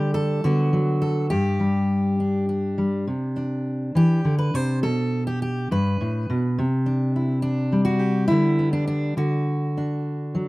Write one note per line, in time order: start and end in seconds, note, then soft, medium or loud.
0.00 0.41 D3 medium
0.00 0.42 G3 soft
0.00 0.14 G4 loud
0.14 0.44 A4 medium
0.44 1.28 D3 medium
0.44 0.72 F#3 soft
0.44 1.28 B3 soft
0.44 1.31 F#4 medium
0.73 1.27 F#3 medium
1.02 1.30 A4 medium
1.30 3.08 G2 medium
1.30 3.07 G4 medium
1.60 2.77 G3 medium
2.20 2.48 D4 soft
2.49 3.35 D4 soft
2.78 3.04 G3 soft
3.07 3.95 C3 medium
3.36 6.61 D4 soft
3.95 4.24 E3 medium
3.95 4.38 G4 medium
4.25 4.54 D3 medium
4.39 4.55 B4 medium
4.54 4.83 C3 medium
4.54 4.83 C5 medium
4.83 5.70 B2 medium
4.83 5.26 A4 medium
5.27 5.41 G4 medium
5.42 5.71 G4 medium
5.71 6.00 G2 medium
5.71 6.58 B4 medium
6.01 6.29 A2 medium
6.30 6.58 B2 medium
6.58 8.30 C3 medium
6.86 7.42 D4 soft
7.16 7.42 E4 soft
7.42 7.84 D4 medium
7.72 8.26 G3 medium
7.85 8.27 F#4 medium
7.99 8.29 G4 loud
8.28 9.17 D3 medium
8.28 9.14 G3 soft
8.28 8.72 E4 loud
8.32 8.58 B3 soft
8.59 9.14 B3 soft
8.73 8.86 D4 medium
8.87 9.17 D4 medium
9.17 10.48 D3 medium
9.17 10.42 F#4 medium
9.78 10.48 D4 soft
10.35 10.48 F#3 medium